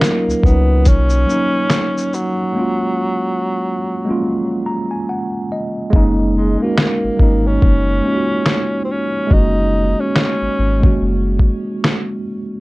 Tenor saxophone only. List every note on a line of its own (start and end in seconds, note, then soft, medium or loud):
0.00 0.47 A#3 loud
0.46 0.89 B3 loud
0.88 2.16 C#4 loud
2.15 5.52 F#3 medium
6.37 6.64 G#3 medium
6.62 7.49 A#3 medium
7.47 8.84 C#4 medium
8.85 8.93 C4 medium
8.91 9.35 C#4 medium
9.33 10.02 D#4 loud
10.00 11.26 C#4 loud